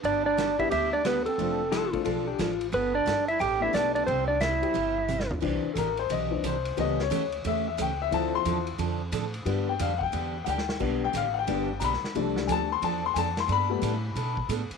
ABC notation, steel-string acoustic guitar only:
X:1
M:4/4
L:1/16
Q:"Swing" 1/4=178
K:C
V:1 name="Steel-string acoustic guitar"
[D,G,B,DG]2 z2 [D,G,B,DG] z3 [D,G,B,DG]2 z2 [D,G,B,DG] z3 | [F,CDA]2 z2 [F,CDA] z3 [F,CDA]2 z2 [F,CDA] z3 | [G,B,DA]2 z2 [G,B,DA] z3 [G,B,DA]2 z2 [G,B,DA] z3 | [C,G,CEG]2 z2 [C,G,CEG] z3 [C,G,CEG]2 z2 [C,G,CEG] z3 |
[C,E,DG]2 z2 [C,E,DG] z3 [C,E,DG]2 z2 [C,E,DG] z3 | [^C,E,A,^CG]2 z2 [C,E,A,CG] z3 [C,E,A,CG]2 z2 [C,E,A,CG] z3 | [D,F,CDA]2 z2 [D,F,CDA] z3 [D,F,CDA]2 z2 [D,F,CDA] z3 | [D,G,B,DG]2 z2 [D,G,B,DG] z3 [D,G,B,DG]2 z2 [D,G,B,DG] z3 |
[D,G,B,DG]2 z2 [D,G,B,DG] z3 [D,G,B,DG]2 z2 [D,G,B,DG] z3 | [F,CDA]2 z2 [F,CDA] z3 [F,CDA]2 z2 [F,CDA] z3 | [G,B,DA]2 z2 [G,B,DA] z3 [G,B,DA]2 z2 [G,B,DA] z3 |]